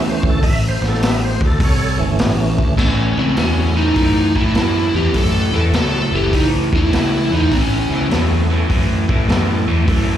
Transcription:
0.00 0.40 E3 soft
0.00 0.40 A3 soft
0.00 0.40 C#4 medium
0.09 0.26 C5 medium
0.23 0.41 D2 medium
0.23 kick loud
0.30 0.46 A4 medium
0.42 0.79 A1 medium
0.42 0.47 D#5 medium
0.42 kick loud
0.42 open hi-hat medium
0.47 0.64 E5 loud
0.68 0.85 C5 medium
0.81 1.36 A1 medium
0.81 snare soft
0.88 1.04 A4 loud
0.93 snare soft
1.02 1.23 E5 loud
1.02 snare loud
1.02 open hi-hat medium
1.24 1.42 C5 medium
1.41 1.59 D2 medium
1.41 kick loud
1.45 1.62 A4 medium
1.60 1.97 C2 loud
1.60 1.98 A4 medium
1.60 2.00 C#5 medium
1.60 kick loud
1.60 open hi-hat medium
1.99 2.18 G1 medium
1.99 2.74 E3 medium
1.99 2.75 A3 soft
1.99 2.75 C#4 medium
2.19 2.56 A1 loud
2.19 snare loud
2.19 open hi-hat medium
2.58 2.77 D2 loud
2.58 kick loud
2.77 3.13 A1 medium
2.77 3.14 A2 medium
2.77 3.14 E3 medium
2.77 3.07 A3 medium
2.77 3.07 C#4 medium
2.77 3.19 C#4 medium
2.77 3.07 E4 medium
2.77 3.07 A4 medium
2.77 kick loud
2.77 crash loud
3.16 3.35 C#2 medium
3.16 3.35 A2 medium
3.16 3.36 E3 medium
3.16 3.94 A3 medium
3.16 3.38 C4 medium
3.16 3.94 C#4 medium
3.16 3.94 E4 medium
3.16 3.94 A4 medium
3.37 3.90 E2 medium
3.37 3.73 A2 medium
3.37 3.73 F#3 medium
3.37 3.79 C#4 medium
3.37 snare loud
3.37 open hi-hat soft
3.76 3.94 A2 medium
3.76 3.94 E3 medium
3.76 4.36 D#4 medium
3.96 4.31 F#2 medium
3.96 4.32 A2 medium
3.96 4.32 E3 medium
3.96 kick loud
3.96 open hi-hat soft
4.35 4.53 A2 medium
4.35 4.54 E3 medium
4.35 4.99 A3 medium
4.35 4.99 C#4 medium
4.35 4.99 E4 medium
4.35 4.96 E4 medium
4.35 4.99 A4 medium
4.35 kick medium
4.55 4.90 F#2 medium
4.55 4.91 A2 medium
4.55 4.91 E3 medium
4.55 snare medium
4.55 open hi-hat soft
4.94 5.12 E2 medium
4.94 5.13 A2 medium
4.94 5.13 E3 medium
4.94 5.16 G4 medium
5.14 5.50 F#2 loud
5.14 5.50 A2 medium
5.14 5.50 E3 medium
5.14 5.44 A3 medium
5.14 5.44 C#4 medium
5.14 5.43 E4 medium
5.14 5.43 A4 medium
5.14 5.55 A4 loud
5.14 kick loud
5.14 open hi-hat medium
5.52 5.70 E2 medium
5.52 5.71 A2 medium
5.52 5.72 E3 medium
5.52 6.32 C#4 medium
5.52 6.32 E4 medium
5.52 6.32 B4 medium
5.56 6.33 A3 medium
5.56 5.61 A4 medium
5.72 6.08 C#2 medium
5.72 6.09 A2 medium
5.72 6.09 F#3 medium
5.72 6.12 A4 medium
5.72 snare loud
5.72 open hi-hat soft
6.12 6.30 F#1 medium
6.12 6.31 A2 medium
6.12 6.31 E3 medium
6.12 6.35 G4 medium
6.32 6.68 C#2 medium
6.32 6.68 A2 medium
6.32 6.69 E3 medium
6.32 6.46 D#4 medium
6.32 kick loud
6.32 open hi-hat medium
6.72 6.90 E2 medium
6.72 6.90 A2 medium
6.72 6.90 E3 medium
6.72 7.36 A3 medium
6.72 7.36 C#4 medium
6.72 7.36 E4 medium
6.72 7.34 E4 medium
6.72 7.36 A4 medium
6.72 kick medium
6.91 7.26 C#2 medium
6.91 7.28 A2 medium
6.91 7.28 E3 medium
6.91 snare loud
6.91 open hi-hat soft
7.30 7.48 E2 medium
7.30 7.49 A2 medium
7.30 7.49 E3 medium
7.35 7.54 D#4 medium
7.51 7.86 A1 medium
7.51 7.87 A2 medium
7.51 7.87 E3 medium
7.51 7.80 A3 medium
7.51 7.80 C#4 medium
7.51 8.07 C#4 medium
7.51 7.80 E4 medium
7.51 7.80 B4 medium
7.51 kick loud
7.51 open hi-hat medium
7.90 8.08 C#2 medium
7.90 8.09 A2 medium
7.90 8.09 E3 medium
7.90 8.69 A3 medium
7.90 8.68 C#4 medium
7.90 8.69 E4 medium
7.90 8.68 A4 medium
7.90 snare soft
8.09 8.62 E2 medium
8.09 8.46 A2 medium
8.09 8.46 F#3 medium
8.09 snare loud
8.09 open hi-hat medium
8.50 8.68 A2 medium
8.50 8.68 E3 medium
8.69 9.05 F#2 medium
8.69 9.05 A2 medium
8.69 9.05 E3 medium
8.69 kick loud
8.69 open hi-hat soft
9.09 9.26 A2 medium
9.09 9.27 A2 medium
9.09 9.27 E3 medium
9.09 9.72 A3 medium
9.09 9.72 C#4 medium
9.09 9.72 E4 medium
9.09 9.72 A4 medium
9.09 kick medium
9.28 9.63 F#2 medium
9.28 9.64 A2 medium
9.28 9.64 E3 medium
9.28 snare loud
9.28 open hi-hat soft
9.68 9.86 E2 medium
9.68 9.85 A2 medium
9.68 9.86 E3 medium
9.87 10.17 F#2 loud
9.87 10.17 A2 medium
9.87 10.17 E3 medium
9.87 10.17 A3 medium
9.87 10.17 C#4 medium
9.87 10.17 E4 medium
9.87 10.17 A4 medium
9.87 kick loud
9.87 open hi-hat medium

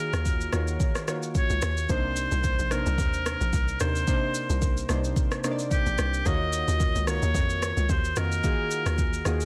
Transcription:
0.00 0.53 D#3 loud
0.00 0.53 A#3 medium
0.00 0.53 F4 medium
0.00 0.54 F#4 medium
0.00 0.38 G#4 loud
0.00 1.08 A#4 loud
0.00 0.54 C#5 medium
0.13 0.48 D#2 medium
0.13 cross-stick medium
0.13 shaker medium
0.25 kick medium
0.25 shaker medium
0.41 shaker medium
0.53 0.77 D#2 loud
0.53 0.98 D#3 medium
0.53 0.98 A#3 medium
0.53 0.98 F4 medium
0.53 0.98 F#4 medium
0.53 0.98 C#5 loud
0.53 cross-stick medium
0.53 shaker medium
0.68 shaker medium
0.80 kick loud
0.80 shaker medium
0.95 cross-stick medium
0.95 shaker soft
1.07 1.74 D#3 medium
1.07 1.74 A#3 medium
1.07 1.74 F4 medium
1.07 1.74 F#4 medium
1.07 1.75 C#5 loud
1.07 cross-stick medium
1.07 shaker loud
1.23 shaker medium
1.35 1.92 C#5 loud
1.35 kick loud
1.35 shaker medium
1.50 1.61 C#2 medium
1.50 shaker soft
1.62 1.86 D#2 medium
1.62 cross-stick loud
1.62 shaker medium
1.77 shaker soft
1.89 2.27 C2 loud
1.89 2.56 C3 loud
1.89 2.56 A#3 medium
1.89 2.56 D4 medium
1.89 2.56 D#4 medium
1.89 2.56 C5 loud
1.89 2.73 C5 loud
1.89 kick loud
1.89 shaker medium
2.16 shaker medium
2.32 2.56 C2 loud
2.32 shaker medium
2.44 kick medium
2.44 shaker medium
2.59 2.83 A#1 medium
2.59 shaker medium
2.71 3.59 C3 medium
2.71 3.59 A#3 medium
2.71 3.59 D4 medium
2.71 3.59 D#4 medium
2.71 3.80 A#4 loud
2.71 3.59 C5 medium
2.71 cross-stick medium
2.71 shaker medium
2.86 2.97 C2 medium
2.86 shaker medium
2.98 3.36 D#2 medium
2.98 kick loud
2.98 shaker medium
3.13 shaker soft
3.26 cross-stick loud
3.26 shaker loud
3.41 3.52 A#1 medium
3.41 shaker medium
3.53 3.77 C2 medium
3.53 kick loud
3.53 shaker medium
3.68 shaker soft
3.80 4.05 D#2 medium
3.80 4.03 C3 medium
3.80 4.03 A#3 medium
3.80 4.03 D4 medium
3.80 4.03 D#4 medium
3.80 4.03 A#4 medium
3.80 4.86 C5 loud
3.80 cross-stick medium
3.80 shaker medium
3.95 shaker medium
4.07 4.74 C3 loud
4.07 4.74 A#3 medium
4.07 4.74 D4 medium
4.07 4.74 D#4 medium
4.07 4.75 C5 loud
4.07 kick loud
4.07 shaker medium
4.35 shaker loud
4.50 4.85 C2 loud
4.50 shaker medium
4.62 kick medium
4.62 shaker medium
4.77 shaker medium
4.89 5.14 C2 medium
4.89 5.34 C3 medium
4.89 5.34 A#3 medium
4.89 5.34 D4 medium
4.89 5.34 D#4 medium
4.89 5.35 C5 loud
4.89 cross-stick medium
4.89 shaker medium
5.04 shaker medium
5.16 kick loud
5.16 shaker medium
5.31 cross-stick medium
5.31 shaker soft
5.44 6.10 C3 medium
5.44 6.10 A#3 medium
5.44 6.11 D4 medium
5.44 6.11 D#4 medium
5.44 5.52 C5 medium
5.44 cross-stick medium
5.44 shaker loud
5.51 6.14 D5 loud
5.59 shaker medium
5.71 6.28 G4 loud
5.71 kick loud
5.71 shaker medium
5.86 5.97 A#1 medium
5.86 shaker soft
5.98 6.23 C2 medium
5.98 cross-stick medium
5.98 shaker medium
6.14 shaker medium
6.26 6.63 D#2 loud
6.26 6.92 D#3 loud
6.26 6.92 A#3 medium
6.26 6.92 F4 medium
6.26 6.93 F#4 medium
6.26 6.93 C#5 loud
6.26 7.07 D#5 loud
6.26 kick loud
6.26 shaker medium
6.53 shaker loud
6.68 6.92 D#2 medium
6.68 shaker medium
6.80 kick loud
6.80 shaker medium
6.95 7.19 C#2 medium
6.95 shaker medium
7.07 7.95 D#3 medium
7.07 7.96 A#3 medium
7.07 7.96 F4 medium
7.07 7.96 F#4 medium
7.07 7.96 A#4 medium
7.07 7.92 C#5 loud
7.07 cross-stick medium
7.07 shaker medium
7.22 7.33 D#2 medium
7.22 shaker medium
7.35 7.72 F2 loud
7.35 kick loud
7.35 shaker medium
7.50 shaker soft
7.62 cross-stick medium
7.62 shaker loud
7.77 7.88 C#2 medium
7.77 shaker medium
7.89 8.14 D#2 loud
7.89 8.19 C5 loud
7.89 kick loud
7.89 shaker medium
8.04 shaker soft
8.16 8.41 F2 medium
8.16 8.39 D#3 medium
8.16 8.39 A#3 medium
8.16 8.39 F4 medium
8.16 8.39 F#4 medium
8.16 9.45 A#4 loud
8.16 8.40 D#5 medium
8.16 cross-stick loud
8.16 shaker medium
8.32 shaker medium
8.44 9.10 D#3 loud
8.44 9.11 A#3 medium
8.44 9.11 F4 medium
8.44 9.11 F#4 medium
8.44 9.11 G#4 loud
8.44 kick loud
8.44 shaker medium
8.71 shaker loud
8.86 9.21 D#2 medium
8.86 cross-stick medium
8.86 shaker medium
8.98 kick medium
8.98 shaker medium
9.13 shaker medium
9.25 9.45 D#2 loud
9.25 9.45 D#3 medium
9.25 9.45 A#3 medium
9.25 9.45 F4 medium
9.25 9.45 F#4 medium
9.25 9.45 G#4 loud
9.25 9.45 D#5 medium
9.25 cross-stick medium
9.25 shaker medium
9.40 shaker medium

